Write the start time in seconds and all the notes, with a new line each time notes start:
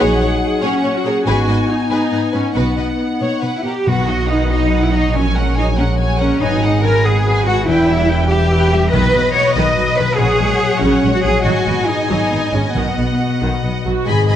Already playing: F#3 D#4 F#5
0.00 A#1 G#4 C#5
0.20 A#2 C#5
0.62 A#2 C#4 G#4 C#5
0.83 A#2 C#5
0.95 F#4
1.04 A#2 G#4 A#4 C#5
1.25 G#1 G#2 B3 D#4 F#4 G#4 B4 G#5
1.48 G#2 B4 D#5
1.68 D#4
1.90 G#2 D#4 G#4 B4
2.12 G#2 B4 D#5
2.32 G#2 C#4 B4
2.55 B1 B2 B3 F#4 B4 F#5
2.77 B2 B4 D#5
3.20 B2 B3 C#5
3.42 B2 B4
3.55 E4
3.64 B2 G4 A#4
3.86 B1 B2 D#3 F#4 B4 F#5
4.07 F#3 D#4 F#4 D#5
4.28 D#3 D#4 B4 F#5
4.50 F#3 D#4 F#4 D#5
4.71 D#3 B4 F#5
4.83 E4
4.92 F#3 D#4 F#4 D#5
5.14 A#1 A#2 F#3 C#4 C#5 G#5
5.35 G#3 C#4 A#4 F#5
5.57 F#3 D#4 G#4 C#5 G#5
5.77 G#3 C#4 A#4 C#5 F#5
5.99 F#3 C#5 F#5 G#5
6.20 G#3 C#4 A#4 C#5 F#5
6.41 G#1 G#2 F#3 D#4 B4 G#5
6.63 G#3 B3 G#4 F#5
6.84 F#3 G#4 A#4 B4 G#5
7.05 G#3 G#4 B4 F#5
7.26 F#3 B4 F#5 G#5
7.46 G#3 F#4 G#4 B4 F#5
7.67 E1 E2 E3 E4 B4 G5
7.87 G3 B3 G4 E5
8.09 E3 G4 B4 G5
8.29 G3 G4 B4 E5
8.51 E3 B4 E5 G5
8.72 G3 G4 B4 E5
8.92 B1 B2 D#3 B4 D#5
9.13 B1 F#3 B3
9.34 F#4 C#5
9.55 B1 D#3 B4 D#5
9.77 B1 F#3 D#5
9.96 B1 D#3 B4
10.17 A#1 A#2 C#3 G#4 C#5 F#5
10.39 A#1 F#3 G#3
10.61 G#4
10.81 A#1 C#3 C#4 F#4
11.03 A#1 G#3 C#5
11.14 F#4
11.24 A#1 F#3 F#4 G#4
11.44 G#1 G#2 F#3 F#4 D#5 G#5
11.67 G#1 B3
11.88 D#4 G#4
12.09 G#1 F#3 D#4 B4
12.30 G#1 B3 D#5
12.52 G#1 G#3 C#4 B4
12.75 B1 B2 D#3 B3 F#5
12.98 B1 B3
13.20 F#4
13.41 B1 D#3 B4
13.63 B1 B3 D#5
13.85 B1 F#3 F#4 B4
14.05 G#1 G#2 G#4 D#5 G#5 B5
14.28 D#3 D#5 G#5 B5